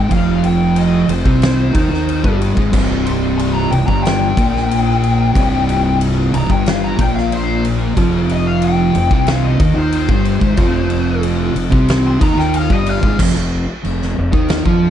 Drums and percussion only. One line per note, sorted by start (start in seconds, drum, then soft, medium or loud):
0.11 kick loud
0.11 ride loud
0.44 ride medium
0.76 ride loud
1.09 ride medium
1.25 kick loud
1.42 snare loud
1.42 ride loud
1.75 kick loud
1.75 ride medium
1.94 snare soft
2.09 ride loud
2.24 kick loud
2.41 ride medium
2.57 kick loud
2.73 kick loud
2.73 crash loud
3.06 ride medium
3.39 ride loud
3.72 ride medium
3.88 kick medium
4.05 snare loud
4.05 ride medium
4.37 kick loud
4.37 ride medium
4.56 snare soft
4.71 ride loud
5.04 ride medium
5.35 kick loud
5.35 ride loud
5.69 ride medium
6.01 ride loud
6.34 ride medium
6.50 kick loud
6.66 snare loud
6.66 ride loud
6.99 kick loud
6.99 ride medium
7.18 snare soft
7.32 ride loud
7.65 ride medium
7.97 kick loud
7.97 ride loud
8.29 ride medium
8.62 ride loud
8.95 ride medium
9.11 kick loud
9.27 snare loud
9.27 ride medium
9.60 kick loud
9.60 ride medium
9.92 ride loud
10.09 kick loud
10.25 ride medium
10.41 kick loud
10.57 kick loud
10.57 ride loud
10.90 ride medium
11.23 ride loud
11.56 ride medium
11.72 kick loud
11.88 snare loud
11.88 ride loud
12.21 kick loud
12.21 ride medium
12.39 snare soft
12.54 ride loud
12.70 kick loud
12.86 ride medium
13.03 kick loud
13.19 kick loud
13.19 crash loud
13.19 crash medium
13.85 crash medium
14.02 snare soft
14.33 kick loud
14.48 snare loud
14.48 crash medium
14.66 kick loud